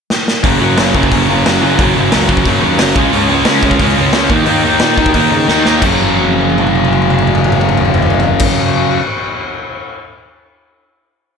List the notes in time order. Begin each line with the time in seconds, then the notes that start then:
0.10 snare
0.28 snare
0.43 F#1 F#2 C#3 F#3, kick, open hi-hat
0.60 F#1 F#2 C#3 F#3
0.78 F#1 F#2 C#3 F#3, snare, open hi-hat
0.95 F#1 F#2 C#3 F#3, kick
1.03 kick
1.12 F#1 F#2 C#3 F#3, kick, open hi-hat
1.28 F#1 F#2 C#3 F#3
1.46 F#1 F#2 C#3 F#3, snare, open hi-hat
1.63 F#1 F#2 C#3 F#3
1.79 F#1 F#2 C#3 F#3, kick, open hi-hat
1.97 F#1 F#2 C#3 F#3
2.12 C#2 F#2 C#3 F#3, snare, open hi-hat
2.29 F#1 F#2 C#3 F#3, kick
2.37 kick
2.45 F#1 F#2 C#3 F#3, kick, open hi-hat
2.62 D#2 F#2 C#3 F#3
2.79 F#1 F#2 C#3 F#3, snare, open hi-hat
2.96 C#2 C#3 G#3 C#4, kick
3.12 C#2 C#3 G#3 C#4, open hi-hat
3.29 C#2 C#3 G#3 C#4
3.45 C#2 C#3 G#3 C#4, snare, open hi-hat
3.63 C#2 C#3 G#3 C#4, kick
3.71 kick
3.79 C#2 C#3 G#3 C#4, kick, open hi-hat
3.97 C#2 C#3 G#3 C#4
4.13 C#2 C#3 G#3 C#4, snare, open hi-hat
4.30 D#2 D#3 A#3 D#4, kick
4.46 D#2 D#3 A#3 D#4, open hi-hat
4.64 D#2 D#3 A#3 D#4
4.80 A#2 D#3 A#3 D#4, snare, open hi-hat
4.97 D#2 D#3 A#3 D#4, kick
5.06 kick
5.14 D#2 D#3 A#3 D#4, kick, open hi-hat
5.31 C#3 D#3 A#3 D#4
5.48 D#2 D#3 A#3 D#4, snare
5.65 D#2 D#3 A#3 D#4, snare
5.81 F#1 F#2 C#3 F#3, kick, crash
5.99 high tom
6.07 high tom
6.16 high tom
6.24 high tom
6.32 high tom
6.41 high tom
6.50 high tom
6.58 mid tom
6.67 mid tom
6.75 mid tom
6.85 mid tom
6.93 mid tom
7.02 mid tom
7.10 mid tom
7.19 mid tom
7.27 mid tom
7.35 mid tom
7.44 mid tom
7.52 mid tom
7.61 mid tom
7.69 mid tom
7.77 floor tom
7.85 floor tom
7.94 floor tom
8.02 floor tom
8.10 floor tom
8.20 floor tom
8.39 kick, crash